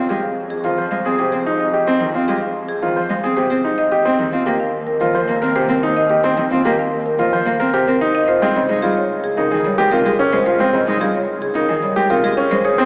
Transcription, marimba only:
0, 0, Header, 1, 2, 480
1, 0, Start_track
1, 0, Tempo, 545455
1, 1529, Time_signature, 4, 2, 24, 8
1, 11310, End_track
2, 0, Start_track
2, 0, Title_t, "Marimba"
2, 0, Program_c, 0, 12
2, 82, Note_on_c, 0, 68, 62
2, 200, Note_on_c, 0, 77, 64
2, 242, Note_off_c, 0, 68, 0
2, 362, Note_off_c, 0, 77, 0
2, 443, Note_on_c, 0, 68, 64
2, 564, Note_on_c, 0, 72, 62
2, 603, Note_off_c, 0, 68, 0
2, 723, Note_off_c, 0, 72, 0
2, 802, Note_on_c, 0, 77, 60
2, 962, Note_off_c, 0, 77, 0
2, 1047, Note_on_c, 0, 72, 73
2, 1164, Note_on_c, 0, 68, 68
2, 1204, Note_off_c, 0, 72, 0
2, 1323, Note_off_c, 0, 68, 0
2, 1408, Note_on_c, 0, 75, 80
2, 1517, Note_off_c, 0, 75, 0
2, 1527, Note_on_c, 0, 75, 78
2, 1684, Note_off_c, 0, 75, 0
2, 1768, Note_on_c, 0, 79, 65
2, 1924, Note_off_c, 0, 79, 0
2, 2006, Note_on_c, 0, 68, 57
2, 2124, Note_on_c, 0, 77, 63
2, 2164, Note_off_c, 0, 68, 0
2, 2283, Note_off_c, 0, 77, 0
2, 2362, Note_on_c, 0, 68, 72
2, 2483, Note_on_c, 0, 72, 54
2, 2523, Note_off_c, 0, 68, 0
2, 2643, Note_off_c, 0, 72, 0
2, 2723, Note_on_c, 0, 77, 64
2, 2883, Note_off_c, 0, 77, 0
2, 2962, Note_on_c, 0, 72, 84
2, 3080, Note_on_c, 0, 68, 61
2, 3122, Note_off_c, 0, 72, 0
2, 3242, Note_off_c, 0, 68, 0
2, 3326, Note_on_c, 0, 75, 97
2, 3435, Note_off_c, 0, 75, 0
2, 3446, Note_on_c, 0, 75, 88
2, 3604, Note_off_c, 0, 75, 0
2, 3684, Note_on_c, 0, 79, 68
2, 3843, Note_off_c, 0, 79, 0
2, 3924, Note_on_c, 0, 70, 69
2, 4045, Note_on_c, 0, 77, 76
2, 4083, Note_off_c, 0, 70, 0
2, 4203, Note_off_c, 0, 77, 0
2, 4284, Note_on_c, 0, 70, 76
2, 4401, Note_on_c, 0, 72, 65
2, 4443, Note_off_c, 0, 70, 0
2, 4562, Note_off_c, 0, 72, 0
2, 4646, Note_on_c, 0, 77, 60
2, 4804, Note_off_c, 0, 77, 0
2, 4890, Note_on_c, 0, 72, 90
2, 5008, Note_on_c, 0, 70, 73
2, 5045, Note_off_c, 0, 72, 0
2, 5164, Note_off_c, 0, 70, 0
2, 5250, Note_on_c, 0, 75, 95
2, 5354, Note_off_c, 0, 75, 0
2, 5364, Note_on_c, 0, 75, 88
2, 5523, Note_off_c, 0, 75, 0
2, 5609, Note_on_c, 0, 79, 72
2, 5765, Note_off_c, 0, 79, 0
2, 5856, Note_on_c, 0, 70, 69
2, 5975, Note_on_c, 0, 77, 73
2, 6007, Note_off_c, 0, 70, 0
2, 6127, Note_off_c, 0, 77, 0
2, 6212, Note_on_c, 0, 70, 72
2, 6329, Note_on_c, 0, 72, 68
2, 6366, Note_off_c, 0, 70, 0
2, 6485, Note_off_c, 0, 72, 0
2, 6571, Note_on_c, 0, 77, 67
2, 6725, Note_off_c, 0, 77, 0
2, 6809, Note_on_c, 0, 72, 83
2, 6930, Note_on_c, 0, 70, 71
2, 6965, Note_off_c, 0, 72, 0
2, 7085, Note_off_c, 0, 70, 0
2, 7170, Note_on_c, 0, 75, 100
2, 7284, Note_on_c, 0, 72, 98
2, 7325, Note_off_c, 0, 75, 0
2, 7443, Note_off_c, 0, 72, 0
2, 7522, Note_on_c, 0, 75, 73
2, 7682, Note_off_c, 0, 75, 0
2, 7764, Note_on_c, 0, 68, 72
2, 7890, Note_on_c, 0, 73, 74
2, 7923, Note_off_c, 0, 68, 0
2, 8045, Note_off_c, 0, 73, 0
2, 8128, Note_on_c, 0, 68, 76
2, 8247, Note_on_c, 0, 70, 71
2, 8285, Note_off_c, 0, 68, 0
2, 8404, Note_off_c, 0, 70, 0
2, 8485, Note_on_c, 0, 73, 65
2, 8643, Note_off_c, 0, 73, 0
2, 8725, Note_on_c, 0, 70, 93
2, 8852, Note_on_c, 0, 68, 71
2, 8883, Note_off_c, 0, 70, 0
2, 9006, Note_off_c, 0, 68, 0
2, 9090, Note_on_c, 0, 72, 96
2, 9198, Note_off_c, 0, 72, 0
2, 9208, Note_on_c, 0, 72, 89
2, 9365, Note_off_c, 0, 72, 0
2, 9451, Note_on_c, 0, 75, 74
2, 9606, Note_off_c, 0, 75, 0
2, 9690, Note_on_c, 0, 68, 74
2, 9816, Note_on_c, 0, 73, 77
2, 9845, Note_off_c, 0, 68, 0
2, 9967, Note_off_c, 0, 73, 0
2, 10050, Note_on_c, 0, 68, 78
2, 10168, Note_on_c, 0, 70, 71
2, 10205, Note_off_c, 0, 68, 0
2, 10325, Note_off_c, 0, 70, 0
2, 10410, Note_on_c, 0, 73, 63
2, 10565, Note_off_c, 0, 73, 0
2, 10650, Note_on_c, 0, 70, 84
2, 10771, Note_on_c, 0, 68, 76
2, 10805, Note_off_c, 0, 70, 0
2, 10926, Note_off_c, 0, 68, 0
2, 11011, Note_on_c, 0, 72, 90
2, 11131, Note_on_c, 0, 73, 92
2, 11165, Note_off_c, 0, 72, 0
2, 11285, Note_off_c, 0, 73, 0
2, 11310, End_track
0, 0, End_of_file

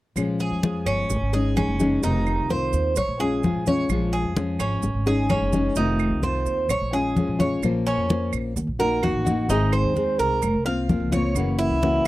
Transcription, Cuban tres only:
0, 0, Header, 1, 2, 480
1, 0, Start_track
1, 0, Key_signature, -5, "minor"
1, 0, Tempo, 466200
1, 172, Time_signature, 4, 2, 24, 8
1, 12433, End_track
2, 0, Start_track
2, 0, Title_t, "Cuban tres"
2, 0, Program_c, 0, 25
2, 414, Note_on_c, 0, 68, 58
2, 879, Note_off_c, 0, 68, 0
2, 889, Note_on_c, 0, 61, 73
2, 1357, Note_off_c, 0, 61, 0
2, 1374, Note_on_c, 0, 68, 70
2, 1607, Note_off_c, 0, 68, 0
2, 1614, Note_on_c, 0, 61, 67
2, 2080, Note_off_c, 0, 61, 0
2, 2096, Note_on_c, 0, 63, 74
2, 2561, Note_off_c, 0, 63, 0
2, 2579, Note_on_c, 0, 72, 59
2, 3043, Note_off_c, 0, 72, 0
2, 3059, Note_on_c, 0, 73, 63
2, 3290, Note_off_c, 0, 73, 0
2, 3296, Note_on_c, 0, 68, 69
2, 3761, Note_off_c, 0, 68, 0
2, 3784, Note_on_c, 0, 73, 64
2, 4245, Note_off_c, 0, 73, 0
2, 4250, Note_on_c, 0, 68, 66
2, 4718, Note_off_c, 0, 68, 0
2, 4734, Note_on_c, 0, 61, 73
2, 5201, Note_off_c, 0, 61, 0
2, 5218, Note_on_c, 0, 68, 71
2, 5450, Note_off_c, 0, 68, 0
2, 5456, Note_on_c, 0, 61, 73
2, 5921, Note_off_c, 0, 61, 0
2, 5937, Note_on_c, 0, 63, 70
2, 6402, Note_off_c, 0, 63, 0
2, 6417, Note_on_c, 0, 72, 58
2, 6882, Note_off_c, 0, 72, 0
2, 6902, Note_on_c, 0, 73, 68
2, 7131, Note_off_c, 0, 73, 0
2, 7138, Note_on_c, 0, 68, 70
2, 7602, Note_off_c, 0, 68, 0
2, 7616, Note_on_c, 0, 73, 61
2, 7848, Note_off_c, 0, 73, 0
2, 8098, Note_on_c, 0, 61, 74
2, 8562, Note_off_c, 0, 61, 0
2, 9057, Note_on_c, 0, 70, 77
2, 9288, Note_off_c, 0, 70, 0
2, 9297, Note_on_c, 0, 66, 62
2, 9761, Note_off_c, 0, 66, 0
2, 9778, Note_on_c, 0, 63, 74
2, 10009, Note_off_c, 0, 63, 0
2, 10015, Note_on_c, 0, 72, 61
2, 10480, Note_off_c, 0, 72, 0
2, 10494, Note_on_c, 0, 70, 67
2, 10960, Note_off_c, 0, 70, 0
2, 10973, Note_on_c, 0, 77, 75
2, 11439, Note_off_c, 0, 77, 0
2, 11453, Note_on_c, 0, 73, 73
2, 11919, Note_off_c, 0, 73, 0
2, 11929, Note_on_c, 0, 64, 77
2, 12397, Note_off_c, 0, 64, 0
2, 12433, End_track
0, 0, End_of_file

